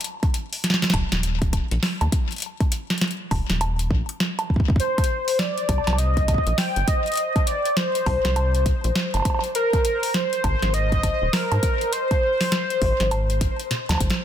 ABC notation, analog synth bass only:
X:1
M:4/4
L:1/16
Q:"Swing 16ths" 1/4=101
K:Eb
V:1 name="Analog synth bass" clef=bass
z6 E,,, E,,,3 z B,,, z E,, z2 | z6 E,,, E,,,3 B,,, z4 z | z6 C,, C,,3 z B,,, z G,,, z2 | z6 C,, C,,3 z B,,, z G,,, z2 |
z6 A,,, A,,,3 z E,,, z A,, z2 | z6 A,,, A,,,3 z3 E,, A,,, z |]